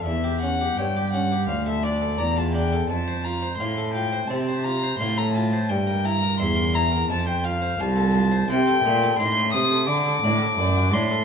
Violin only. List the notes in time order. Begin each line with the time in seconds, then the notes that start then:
0.04 E5
0.40 F#5
0.77 G5
1.12 F#5
1.48 F5
1.67 E5
1.83 D5
2.18 A#5
2.37 A5
2.54 G5
2.90 A5
3.24 A#5
3.57 C6
3.93 G5
4.27 A5
4.63 A#5
4.99 C6
5.17 A#5
5.33 A5
5.69 G5
6.05 A#5
6.39 C6
6.75 A#5
7.10 A5
7.28 G5
7.44 F5
7.80 A5
8.50 G5
9.19 C6
9.53 D#6
9.89 D6
10.93 C6